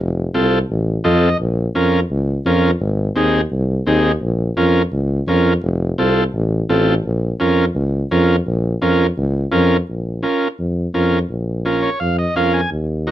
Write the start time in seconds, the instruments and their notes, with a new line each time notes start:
0.00 tuba F1
0.34 tuba C2, transistor combo organ C4 F4 A4
0.70 tuba A1
1.04 tuba F2, transistor combo organ C4 F4 A4 D#5
1.40 tuba A#1
1.75 tuba F2, transistor combo organ C#4 F4 A#4
2.11 tuba C#2
2.45 tuba F2, transistor combo organ C#4 F4 A#4
2.80 tuba G#1
3.16 tuba D#2, transistor combo organ C4 D#4 G#4
3.51 tuba C2
3.87 tuba D#2, transistor combo organ C4 D#4 G#4
4.21 tuba A#1
4.56 tuba F2, transistor combo organ C#4 F4 A#4
4.92 tuba C#2
5.27 tuba F2, transistor combo organ C#4 F4 A#4
5.63 tuba F1
5.98 tuba C2, transistor combo organ C4 F4 A4
6.34 tuba A1
6.69 tuba A1, transistor combo organ C4 F4 A4
7.05 tuba A#1
7.40 tuba F2, transistor combo organ C#4 F4 A#4
7.75 tuba C#2
8.11 tuba F2, transistor combo organ C#4 F4 A#4
8.47 tuba A#1
8.82 tuba F2, transistor combo organ C#4 F4 A#4
9.17 tuba C#2
9.52 tuba F2, transistor combo organ C#4 F4 A#4
9.89 tuba A#1
10.23 transistor combo organ C#4 F4 A#4
10.59 tuba F2
10.94 tuba F2, transistor combo organ C#4 F4 A#4
11.29 tuba A#1
11.65 transistor combo organ C#4 F4 A#4
11.83 transistor combo organ C#5
12.00 tuba F2, transistor combo organ F5
12.19 transistor combo organ D#5
12.36 tuba F2, transistor combo organ C#4 F4 A#4 F5
12.54 transistor combo organ G#5
12.71 tuba D#2
13.07 transistor combo organ D#4 F#4 A#4